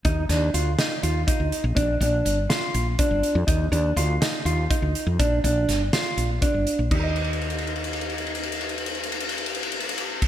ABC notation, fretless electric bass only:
X:1
M:7/8
L:1/16
Q:1/4=122
K:Eb
V:1 name="Fretless electric bass" clef=bass
E,,2 E,,2 D,,2 z2 E,,2 z D,, z B,,, | B,,,2 B,,,2 G,,,2 z2 B,,,2 z G,,, z F,, | E,,2 E,,2 D,,2 z2 E,,2 z D,, z F,, | B,,,2 B,,,2 G,,,2 z2 B,,,2 z G,,, z B,,, |
E,,12- E,,2- | E,,12- E,,2 |]